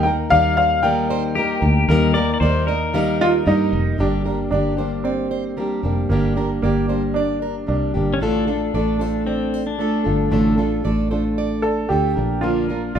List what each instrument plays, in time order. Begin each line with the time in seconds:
Already playing: fingered electric bass D#2
0.03 steel-string acoustic guitar D#4 A#4, upright piano G5
0.08 steel-string acoustic guitar A#3
0.30 fingered electric bass D#2, steel-string acoustic guitar G3 A#3 D#4 A#4 D5, upright piano F5
0.57 steel-string acoustic guitar C5, upright piano F5
0.83 steel-string acoustic guitar D#3 G3 A#3 D#4 A#4 D5, upright piano G5
1.10 steel-string acoustic guitar C5
1.35 steel-string acoustic guitar G3 A#3 D#4 A#4, pedal steel guitar G4
1.61 fingered electric bass D2, steel-string acoustic guitar A#3 D#4 A#4
1.88 fingered electric bass D#2, steel-string acoustic guitar D#3 G3 A#3 D#4 A#4, pedal steel guitar A#4
2.14 steel-string acoustic guitar D#4 A#4, pedal steel guitar D5
2.18 steel-string acoustic guitar A#3
2.34 pedal steel guitar D5
2.40 fingered electric bass D#2, steel-string acoustic guitar G3 A#3 D#4 D5, pedal steel guitar C5
2.44 steel-string acoustic guitar A#4
2.67 steel-string acoustic guitar D#4 A#4 D#5, pedal steel guitar A#4
2.71 steel-string acoustic guitar A#3
2.94 steel-string acoustic guitar D#3 G3 A#3 D#4 A#4 F5
3.21 upright piano F4, steel-string acoustic guitar D#5
3.46 fingered electric bass G2, steel-string acoustic guitar G3 A#3 D#4 A#4, upright piano D#4
3.73 fingered electric bass F1
3.98 fingered electric bass G1, steel-string acoustic guitar G2 D3 G3 A#3 D4 G4, upright piano D4
4.25 steel-string acoustic guitar G3 A#3 D4 G4 A#4
4.51 fingered electric bass G1, steel-string acoustic guitar G3 A#3 D4 G4 D5, upright piano D4
4.77 steel-string acoustic guitar G3 A#3 D4 G4 C5
5.04 upright piano C4, steel-string acoustic guitar D5
5.31 steel-string acoustic guitar C5
5.57 steel-string acoustic guitar G3 A#3 D4 G4 A#4
5.83 fingered electric bass F1, steel-string acoustic guitar G3 A#3 D4 G4
6.09 fingered electric bass G1, steel-string acoustic guitar G2 D3 G3 A#3 D4 G4, upright piano A#3
6.36 steel-string acoustic guitar G3 A#3 D4 G4 A#4
6.62 fingered electric bass G1, steel-string acoustic guitar G3 A#3 D4 G4 D5, upright piano A#3
6.88 steel-string acoustic guitar G3 A#3 D4 G4 C5
7.14 upright piano D4, steel-string acoustic guitar D5
7.42 steel-string acoustic guitar A#4
7.67 fingered electric bass C2, steel-string acoustic guitar G3 A#3 D4 G4, upright piano D4
7.94 fingered electric bass G1, steel-string acoustic guitar G3 A#3 D4 G4
8.14 pedal steel guitar C#4
8.20 fingered electric bass A1, steel-string acoustic guitar A2 D3 A3 D4 F4 A4, pedal steel guitar D4
8.47 steel-string acoustic guitar A3 D4 F4 A4
8.74 fingered electric bass A1, steel-string acoustic guitar A3 D4 F4 A4 D5
8.99 steel-string acoustic guitar A3 D4 F4 A4 C5
9.27 pedal steel guitar C4, steel-string acoustic guitar D5
9.54 steel-string acoustic guitar C5
9.67 pedal steel guitar D4
9.79 steel-string acoustic guitar A3 D4 F4 A4
10.04 fingered electric bass G1, steel-string acoustic guitar A3 D4 F4 A4
10.31 fingered electric bass A1, steel-string acoustic guitar A2 D3 A3 D4 F4 A4
10.57 steel-string acoustic guitar A3 D4 F4 A4
10.84 fingered electric bass A1, steel-string acoustic guitar A3 D4 F4 A4 D5
11.11 steel-string acoustic guitar A3 D4 F4 A4 C5
11.38 steel-string acoustic guitar D5
11.62 upright piano A4, steel-string acoustic guitar A4
11.88 fingered electric bass D2, steel-string acoustic guitar A3 D4 F4 A4, upright piano G4
12.15 fingered electric bass A#1, steel-string acoustic guitar F3 A#3 D4 A#4
12.41 steel-string acoustic guitar A#2 D3 F3 A#3 D4 A#4, upright piano F4
12.68 steel-string acoustic guitar F3 A#3 D4 A#4
12.95 fingered electric bass A#1, steel-string acoustic guitar F3, upright piano F4